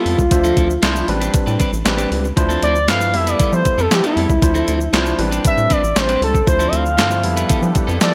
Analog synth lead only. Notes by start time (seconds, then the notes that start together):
Already playing: F4
2.63 D5
2.90 F5
3.15 E5
3.28 D5
3.54 C5
3.80 A4
3.93 G4
4.06 E4
5.47 E5
5.72 D5
5.98 C5
6.24 A4
6.49 C5
6.68 E5
6.75 F5
8.03 D5